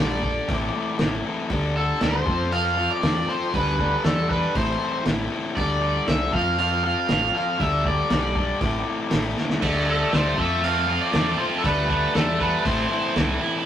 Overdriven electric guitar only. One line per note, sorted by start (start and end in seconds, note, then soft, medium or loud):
0.00 1.21 D5 medium
1.77 2.03 A4 medium
2.03 2.55 C5 medium
2.53 2.91 F5 medium
2.91 3.30 D5 loud
3.29 3.55 C5 medium
3.55 4.04 B4 medium
4.05 4.30 A4 medium
4.31 4.56 B4 medium
4.56 5.03 C5 medium
5.57 6.08 D5 medium
6.08 6.34 E5 medium
6.34 6.58 F5 loud
6.60 6.83 F5 medium
6.84 7.34 F5 loud
7.35 7.59 F5 medium
7.61 7.86 E5 medium
7.87 9.34 D5 medium
9.90 10.15 A4 medium
10.16 10.38 C5 medium
10.40 10.64 E5 medium
10.64 11.00 F5 medium
11.01 11.36 D5 loud
11.38 11.43 C5 medium
11.58 11.65 A4 medium
11.65 12.12 B4 medium
12.15 12.39 A4 medium
12.41 12.57 B4 medium
12.59 12.65 B4 soft
12.66 13.13 C5 medium